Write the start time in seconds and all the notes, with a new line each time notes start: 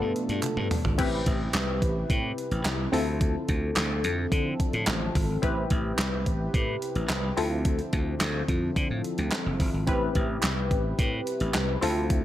Already playing: B2 F3 A3 B3 D4 F4 A4
0.01 G2
0.16 closed hi-hat
0.29 G2, closed hi-hat
0.43 clap, closed hi-hat, high tom
0.57 G2, mid tom
0.71 mid tom, open hi-hat
0.85 G#1, floor tom
0.98 A1 C4 E4 G4 B4, kick, closed hi-hat, crash
1.26 A1, kick, closed hi-hat
1.54 C2, snare, clap, closed hi-hat
1.82 A1, kick, closed hi-hat
2.10 A2, kick, closed hi-hat
2.38 closed hi-hat
2.51 A1, closed hi-hat
2.65 C2, snare, clap, closed hi-hat
2.92 D2 D3 F3 C4 E4 F4 A4, open hi-hat
3.21 kick, closed hi-hat
3.48 D2, kick, closed hi-hat
3.76 D2, snare, clap, closed hi-hat
4.04 F2, closed hi-hat
4.32 D3, kick, closed hi-hat
4.60 kick, closed hi-hat
4.73 A2, closed hi-hat
4.87 A1, snare, clap, closed hi-hat
5.15 G#1, kick, open hi-hat
5.42 A1 C3 C4 E4 G4 B4, kick, closed hi-hat
5.70 A1, kick, closed hi-hat
5.98 C2, snare, clap, closed hi-hat
6.26 A1, kick, closed hi-hat
6.54 A2, kick, closed hi-hat
6.82 closed hi-hat
6.95 A1, closed hi-hat
7.09 C2, snare, clap, closed hi-hat
7.37 D2 D3 C4 E4 F4 A4, open hi-hat
7.65 kick, closed hi-hat
7.79 closed hi-hat
7.93 D2, kick, closed hi-hat
8.21 D2, snare, clap, closed hi-hat
8.48 F2, kick, closed hi-hat
8.76 D3, kick, closed hi-hat
8.90 A2
9.04 closed hi-hat
9.18 D2, closed hi-hat
9.32 snare, clap, closed hi-hat
9.46 F#1
9.60 G1, kick, open hi-hat
9.74 G#1
9.87 A1 C3 C4 E4 G4 B4, kick, closed hi-hat
10.15 A1, kick, closed hi-hat
10.43 C2, snare, clap, closed hi-hat
10.71 A1, kick, closed hi-hat
10.99 A2, kick, closed hi-hat
11.27 closed hi-hat
11.40 A1, closed hi-hat
11.54 C2, snare, clap, closed hi-hat
11.81 D2 D3 C4 E4 F4 A4, open hi-hat
12.10 kick, closed hi-hat